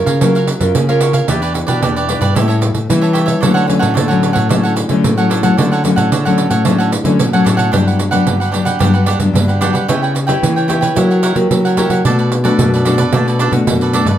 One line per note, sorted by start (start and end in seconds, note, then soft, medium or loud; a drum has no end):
0.00 0.19 C#3 soft
0.00 0.17 C#4 medium
0.00 0.17 F4 medium
0.00 0.17 A#4 medium
0.06 0.52 C#3 medium
0.06 0.20 A#4 medium
0.06 0.19 C#5 medium
0.06 0.19 F5 medium
0.06 pandeiro medium
0.21 0.72 F#3 medium
0.21 0.46 C#4 soft
0.21 0.46 F4 medium
0.21 0.34 F#4 soft
0.21 0.46 A#4 medium
0.21 0.34 A#4 soft
0.21 0.34 C#5 soft
0.21 0.34 F5 soft
0.21 pandeiro medium
0.35 0.47 A#4 medium
0.35 0.48 C#5 medium
0.35 0.47 F5 medium
0.35 pandeiro soft
0.47 muted cavaquinho stroke soft
0.47 pandeiro medium
0.60 0.72 F#2 medium
0.60 0.83 C#4 medium
0.60 0.84 F4 medium
0.60 0.84 A#4 medium
0.60 pandeiro medium
0.75 1.21 C#3 medium
0.75 1.26 C#3 medium
0.75 pandeiro medium
0.89 1.24 C#4 medium
0.89 1.24 F4 medium
0.89 1.25 A#4 medium
0.89 1.00 A#4 medium
0.89 1.00 C#5 medium
0.89 1.01 F5 medium
0.89 pandeiro soft
1.01 1.14 F#4 medium
1.01 1.13 A#4 soft
1.01 1.13 C#5 medium
1.01 1.13 F5 medium
1.01 pandeiro medium
1.13 1.27 A#4 medium
1.13 1.27 C#5 medium
1.13 1.27 F5 medium
1.13 pandeiro medium
1.28 1.63 E2 medium
1.28 1.79 E3 medium
1.28 1.64 D4 medium
1.28 1.40 E4 soft
1.28 1.41 G4 medium
1.28 1.65 G4 medium
1.28 1.41 B4 soft
1.28 1.65 B4 medium
1.28 1.41 D5 medium
1.28 pandeiro medium
1.42 1.53 G4 medium
1.42 1.53 B4 medium
1.42 1.53 D5 medium
1.42 pandeiro soft
1.54 muted cavaquinho stroke soft
1.54 pandeiro medium
1.67 1.80 B2 medium
1.67 2.04 D4 medium
1.67 2.04 G4 medium
1.67 1.81 G4 medium
1.67 1.81 B4 medium
1.67 2.04 B4 medium
1.67 1.80 D5 medium
1.67 pandeiro medium
1.81 2.16 E2 medium
1.81 2.33 B2 medium
1.81 1.94 E4 soft
1.81 1.94 G4 soft
1.81 1.95 B4 soft
1.81 1.95 D5 medium
1.81 pandeiro medium
1.96 2.22 G4 medium
1.96 2.21 B4 medium
1.96 2.20 D5 medium
1.96 pandeiro soft
2.09 2.24 D4 medium
2.09 2.25 G4 medium
2.09 2.25 B4 medium
2.09 pandeiro medium
2.21 2.33 G2 medium
2.21 2.34 G4 medium
2.21 2.34 B4 medium
2.21 2.34 D5 medium
2.21 pandeiro medium
2.35 2.70 A2 loud
2.35 2.87 A2 medium
2.35 2.71 G3 medium
2.35 2.71 C#4 medium
2.35 2.71 E4 medium
2.35 2.48 G4 soft
2.35 2.48 A4 soft
2.35 2.47 C#5 soft
2.35 2.47 E5 soft
2.35 pandeiro medium
2.48 2.60 A4 medium
2.48 2.60 C#5 medium
2.48 2.60 E5 medium
2.48 pandeiro soft
2.61 muted cavaquinho stroke soft
2.61 pandeiro medium
2.74 2.86 A2 medium
2.74 pandeiro medium
2.89 3.35 E3 medium
2.89 3.41 E3 medium
2.89 3.39 G3 medium
2.89 3.39 C#4 medium
2.89 3.39 E4 medium
2.89 pandeiro medium
3.01 3.12 A4 medium
3.01 3.13 C#5 medium
3.01 3.13 E5 medium
3.01 pandeiro soft
3.13 3.27 G4 medium
3.13 3.26 A4 medium
3.13 3.25 C#5 medium
3.13 3.24 E5 medium
3.13 pandeiro medium
3.26 3.40 A4 medium
3.26 3.40 C#5 medium
3.26 3.40 E5 medium
3.26 pandeiro medium
3.41 3.94 D3 medium
3.41 3.77 D3 loud
3.41 3.65 F#3 medium
3.41 3.66 A3 medium
3.41 3.66 C#4 medium
3.41 3.54 D4 soft
3.41 3.55 A4 medium
3.41 3.54 C#5 medium
3.41 3.53 F#5 medium
3.41 pandeiro medium
3.54 3.66 A4 medium
3.54 3.66 C#5 medium
3.54 3.67 F#5 medium
3.54 pandeiro soft
3.67 3.94 F#3 medium
3.67 3.95 A3 medium
3.67 3.95 C#4 medium
3.67 muted cavaquinho stroke soft
3.67 pandeiro medium
3.79 3.94 A2 medium
3.79 3.94 A4 medium
3.79 3.94 C#5 medium
3.79 3.94 F#5 medium
3.79 pandeiro medium
3.94 4.48 A2 medium
3.94 4.31 D3 medium
3.94 4.08 D4 soft
3.94 4.08 A4 soft
3.94 4.07 C#5 medium
3.94 4.07 F#5 medium
3.94 pandeiro medium
4.08 4.46 F#3 medium
4.08 4.46 A3 medium
4.08 4.47 C#4 medium
4.08 4.33 A4 medium
4.08 4.33 C#5 medium
4.08 4.32 F#5 medium
4.08 pandeiro soft
4.23 pandeiro medium
4.33 4.82 A2 medium
4.33 4.48 A4 medium
4.33 4.48 C#5 medium
4.33 4.47 F#5 medium
4.33 pandeiro medium
4.49 5.01 D3 medium
4.49 4.86 F#3 soft
4.49 4.86 A3 medium
4.49 4.87 C#4 medium
4.49 4.62 D4 soft
4.49 4.62 A4 soft
4.49 4.63 C#5 soft
4.49 4.62 F#5 soft
4.49 pandeiro medium
4.63 4.75 A4 soft
4.63 4.75 C#5 medium
4.63 4.75 F#5 medium
4.63 pandeiro soft
4.76 muted cavaquinho stroke soft
4.76 pandeiro medium
4.89 5.02 D3 medium
4.89 5.13 F#3 medium
4.89 5.13 A3 medium
4.89 5.13 C#4 medium
4.89 pandeiro medium
5.03 5.55 A2 medium
5.03 5.50 A2 medium
5.03 pandeiro medium
5.17 5.40 F#3 medium
5.17 5.40 A3 medium
5.17 5.40 C#4 medium
5.17 5.29 A4 medium
5.17 5.29 C#5 medium
5.17 5.30 F#5 medium
5.17 pandeiro soft
5.30 5.43 D4 soft
5.30 5.43 A4 medium
5.30 5.42 C#5 medium
5.30 5.42 F#5 medium
5.30 pandeiro medium
5.43 5.53 F#3 medium
5.43 5.53 A3 medium
5.43 5.53 C#4 medium
5.43 5.57 A4 medium
5.43 5.56 C#5 medium
5.43 5.56 F#5 medium
5.43 pandeiro medium
5.57 6.09 D3 medium
5.57 5.93 D3 medium
5.57 5.81 F#3 medium
5.57 5.80 A3 medium
5.57 5.81 C#4 medium
5.57 5.70 D4 soft
5.57 5.70 A4 medium
5.57 5.71 C#5 soft
5.57 5.70 F#5 medium
5.57 pandeiro medium
5.72 5.83 A4 medium
5.72 5.83 C#5 medium
5.72 5.83 F#5 medium
5.72 pandeiro soft
5.84 6.10 F#3 medium
5.84 6.10 A3 medium
5.84 6.10 C#4 medium
5.84 muted cavaquinho stroke soft
5.84 pandeiro medium
5.96 6.09 A2 medium
5.96 6.10 A4 medium
5.96 6.10 C#5 medium
5.96 6.10 F#5 medium
5.96 pandeiro medium
6.11 6.63 A2 soft
6.11 6.46 D3 medium
6.11 6.24 D4 soft
6.11 6.24 A4 medium
6.11 6.24 C#5 soft
6.11 6.24 F#5 soft
6.11 pandeiro medium
6.25 6.62 F#3 medium
6.25 6.62 A3 medium
6.25 6.62 C#4 medium
6.25 6.51 A4 medium
6.25 6.50 C#5 medium
6.25 6.49 F#5 medium
6.25 pandeiro soft
6.38 pandeiro medium
6.50 6.97 A2 medium
6.50 6.64 A4 medium
6.50 6.64 C#5 medium
6.50 6.64 F#5 medium
6.50 pandeiro medium
6.65 7.17 D3 medium
6.65 6.91 F#3 soft
6.65 6.91 A3 medium
6.65 6.91 C#4 medium
6.65 6.78 D4 soft
6.65 6.78 A4 soft
6.65 6.78 C#5 soft
6.65 6.77 F#5 soft
6.65 pandeiro medium
6.78 6.91 A4 medium
6.78 6.91 C#5 medium
6.78 6.91 F#5 medium
6.78 pandeiro soft
6.92 muted cavaquinho stroke soft
6.92 pandeiro medium
7.04 7.16 D3 medium
7.04 7.28 F#3 medium
7.04 7.28 A3 medium
7.04 7.29 C#4 medium
7.04 pandeiro medium
7.19 7.71 A2 medium
7.19 7.44 B2 medium
7.19 pandeiro medium
7.33 7.69 F#3 medium
7.33 7.69 A3 medium
7.33 7.69 C#4 medium
7.33 7.44 A4 medium
7.33 7.45 C#5 medium
7.33 7.45 F#5 medium
7.33 pandeiro soft
7.44 7.70 A2 medium
7.44 7.58 D4 soft
7.44 7.57 A4 soft
7.44 7.56 C#5 soft
7.44 7.56 F#5 soft
7.44 pandeiro medium
7.57 7.71 A4 medium
7.57 7.71 C#5 medium
7.57 7.71 F#5 medium
7.57 pandeiro medium
7.72 8.24 G2 soft
7.72 8.19 G2 medium
7.72 8.09 F#3 medium
7.72 8.10 B3 medium
7.72 7.85 D4 medium
7.72 8.10 D4 medium
7.72 7.85 G4 medium
7.72 7.85 B4 medium
7.72 7.86 F#5 medium
7.72 pandeiro medium
7.87 7.98 G4 soft
7.87 7.99 B4 soft
7.87 7.99 F#5 soft
7.87 pandeiro soft
7.99 muted cavaquinho stroke soft
7.99 pandeiro medium
8.11 8.49 F#3 medium
8.11 8.49 B3 medium
8.11 8.50 D4 medium
8.11 8.39 G4 medium
8.11 8.38 B4 medium
8.11 8.38 F#5 medium
8.11 pandeiro medium
8.27 8.73 G2 medium
8.27 8.78 D3 soft
8.27 pandeiro medium
8.40 8.51 G4 soft
8.40 8.51 B4 soft
8.40 8.52 F#5 soft
8.40 pandeiro soft
8.51 8.76 F#3 soft
8.51 8.77 B3 medium
8.51 8.65 D4 soft
8.51 8.77 D4 medium
8.51 8.65 G4 soft
8.51 8.65 B4 soft
8.51 8.64 F#5 medium
8.51 pandeiro medium
8.65 8.79 G4 medium
8.65 8.79 B4 medium
8.65 8.79 F#5 medium
8.65 pandeiro medium
8.79 9.15 G2 loud
8.79 9.32 G2 medium
8.79 9.07 F#3 medium
8.79 9.07 B3 medium
8.79 8.92 D4 medium
8.79 9.07 D4 medium
8.79 8.93 G4 medium
8.79 8.93 B4 medium
8.79 8.92 F#5 medium
8.79 pandeiro medium
8.94 9.06 G4 soft
8.94 9.06 B4 soft
8.94 9.06 F#5 soft
8.94 pandeiro soft
9.06 9.18 D4 medium
9.06 9.18 G4 medium
9.06 9.19 B4 medium
9.06 9.19 F#5 medium
9.06 pandeiro medium
9.19 9.32 G2 medium
9.19 9.57 F#3 medium
9.19 9.57 B3 medium
9.19 9.57 D4 medium
9.19 muted cavaquinho stroke soft
9.19 pandeiro medium
9.34 9.69 G2 medium
9.34 9.87 D3 medium
9.34 pandeiro medium
9.48 9.60 G4 soft
9.48 9.61 B4 soft
9.48 9.61 F#5 soft
9.48 pandeiro soft
9.61 9.78 F#3 medium
9.61 9.78 B3 medium
9.61 9.74 D4 medium
9.61 9.78 D4 medium
9.61 9.73 G4 medium
9.61 9.72 B4 medium
9.61 9.72 F#5 medium
9.61 pandeiro medium
9.73 9.86 G3 medium
9.73 9.87 G4 soft
9.73 9.87 B4 soft
9.73 9.87 F#5 soft
9.73 pandeiro medium
9.88 10.35 C#3 medium
9.88 10.40 C#3 medium
9.88 10.14 B3 medium
9.88 10.01 E4 medium
9.88 10.14 E4 medium
9.88 10.15 G4 medium
9.88 10.01 B4 medium
9.88 10.01 C#5 medium
9.88 10.01 G5 medium
9.88 pandeiro medium
10.02 10.14 B4 soft
10.02 10.14 C#5 soft
10.02 10.14 G5 soft
10.02 pandeiro soft
10.15 muted cavaquinho stroke soft
10.15 pandeiro medium
10.27 10.65 B3 medium
10.27 10.65 E4 medium
10.27 10.65 G4 medium
10.27 10.54 B4 medium
10.27 10.54 C#5 medium
10.27 10.54 G5 medium
10.27 pandeiro medium
10.41 10.93 C#3 medium
10.41 10.89 E3 medium
10.41 pandeiro medium
10.56 10.67 B4 soft
10.56 10.68 C#5 soft
10.56 10.68 G5 soft
10.56 pandeiro soft
10.68 10.92 B3 medium
10.68 10.81 E4 soft
10.68 10.92 E4 medium
10.68 10.92 G4 medium
10.68 10.81 B4 soft
10.68 10.81 C#5 medium
10.68 10.80 G5 soft
10.68 pandeiro medium
10.81 10.95 B4 medium
10.81 10.95 C#5 medium
10.81 10.94 G5 medium
10.81 pandeiro medium
10.95 11.48 F#3 medium
10.95 11.31 F#3 loud
10.95 11.32 A#3 medium
10.95 11.09 E4 medium
10.95 11.33 E4 medium
10.95 11.33 G4 medium
10.95 11.09 A#4 medium
10.95 11.09 C#5 medium
10.95 11.09 F#5 medium
10.95 pandeiro medium
11.11 11.22 A#4 soft
11.11 11.22 C#5 soft
11.11 11.22 F#5 soft
11.11 pandeiro soft
11.22 11.36 E4 medium
11.22 11.36 A#4 medium
11.22 11.36 C#5 medium
11.22 11.36 F#5 medium
11.22 pandeiro medium
11.35 11.48 F#3 medium
11.35 11.72 A#3 medium
11.35 11.73 E4 medium
11.35 11.73 G4 medium
11.35 muted cavaquinho stroke soft
11.35 pandeiro medium
11.50 12.02 C#3 medium
11.50 11.85 F#3 medium
11.50 pandeiro medium
11.65 11.76 A#4 soft
11.65 11.77 C#5 soft
11.65 11.77 F#5 soft
11.65 pandeiro soft
11.77 12.00 A#3 medium
11.77 11.90 E4 medium
11.77 12.00 E4 medium
11.77 12.00 G4 medium
11.77 11.90 A#4 medium
11.77 11.90 C#5 medium
11.77 11.89 F#5 medium
11.77 pandeiro medium
11.90 12.02 F#3 medium
11.90 12.04 A#4 soft
11.90 12.04 C#5 soft
11.90 12.03 F#5 medium
11.90 pandeiro medium
12.05 12.51 B2 medium
12.05 12.56 B2 medium
12.05 12.30 A3 soft
12.05 12.17 D4 medium
12.05 12.31 D4 soft
12.05 12.31 F#4 medium
12.05 12.17 A4 medium
12.05 12.17 B4 medium
12.05 12.18 D5 medium
12.05 pandeiro medium
12.19 12.30 A4 soft
12.19 12.31 B4 soft
12.19 12.31 D5 medium
12.19 pandeiro soft
12.31 muted cavaquinho stroke soft
12.31 pandeiro medium
12.44 12.81 A3 medium
12.44 12.81 D4 medium
12.44 12.81 F#4 medium
12.44 12.71 A4 medium
12.44 12.71 B4 medium
12.44 12.70 D5 medium
12.44 pandeiro medium
12.58 13.11 F#2 soft
12.58 13.04 B2 loud
12.58 pandeiro medium
12.74 12.85 A4 soft
12.74 12.86 B4 soft
12.74 12.86 D5 soft
12.74 pandeiro soft
12.85 13.01 A3 medium
12.85 12.98 D4 soft
12.85 13.02 D4 medium
12.85 13.02 F#4 medium
12.85 12.98 A4 soft
12.85 12.98 B4 medium
12.85 12.97 D5 medium
12.85 pandeiro medium
12.98 13.12 A4 medium
12.98 13.12 B4 medium
12.98 13.11 D5 medium
12.98 pandeiro medium
13.12 13.47 B2 loud
13.12 13.64 B2 medium
13.12 13.38 A3 medium
13.12 13.26 D4 medium
13.12 13.38 D4 soft
13.12 13.39 F#4 medium
13.12 13.26 A4 medium
13.12 13.26 B4 medium
13.12 13.26 D5 medium
13.12 pandeiro medium
13.28 13.39 A4 soft
13.28 13.39 B4 soft
13.28 13.39 D5 medium
13.28 pandeiro soft
13.39 13.52 D4 medium
13.39 13.52 A4 medium
13.39 13.53 B4 medium
13.39 13.53 D5 medium
13.39 pandeiro medium
13.51 13.64 B2 medium
13.51 13.88 A3 medium
13.51 13.89 D4 medium
13.51 13.89 F#4 medium
13.51 muted cavaquinho stroke soft
13.51 pandeiro medium
13.67 14.18 F#2 medium
13.67 14.01 B2 medium
13.67 pandeiro medium
13.81 13.93 A4 soft
13.81 13.93 B4 soft
13.81 13.93 D5 soft
13.81 pandeiro soft
13.93 14.09 A3 medium
13.93 14.06 D4 medium
13.93 14.10 D4 medium
13.93 14.10 F#4 medium
13.93 14.06 A4 medium
13.93 14.06 B4 medium
13.93 14.07 D5 medium
13.93 pandeiro medium
14.05 14.18 G2 medium
14.05 14.18 B4 soft
14.05 14.18 D5 soft
14.05 pandeiro medium
14.09 14.18 A4 soft